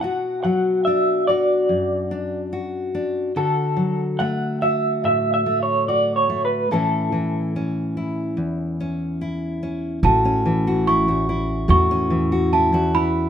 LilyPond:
<<
  \new Staff \with { instrumentName = "Celesta" } { \time 4/4 \key a \major \tempo 4 = 72 r1 | r1 | r1 | a''4 cis'''4 cis'''4 a''8 b''8 | }
  \new Staff \with { instrumentName = "Clean electric guitar" } { \time 4/4 \key a \major fis''8 fis''8 e''8 d''4. r4 | a'4 fis''8 e''8 \tuplet 3/2 { e''8 e''8 cis''8 d''8 cis''8 b'8 } | a'4 r2. | r1 | }
  \new Staff \with { instrumentName = "Steel-string acoustic guitar" } { \time 4/4 \key a \major << { fis'4 d'8 fis'4 d'8 fis'8 d'8 | fis'4 a8 fis'4 a8 fis'8 a8 | <e cis' e'>4 cis'8 e'4 cis'8 e'8 cis'8 | fis'16 cis'8 fis'16 e'16 fis'16 e'8 fis'16 cis'8 fis'16 e'16 fis'16 e'8 | } \\ { b,8 fis4. fis,2 | d8 fis4. a,2 | a,8 e4. e,2 | a,8 e8. e,8. a,8 e8. e,8. | } >> }
  \new Staff \with { instrumentName = "Upright bass" } { \clef bass \time 4/4 \key a \major r1 | r1 | r1 | a,,2 e,2 | }
>>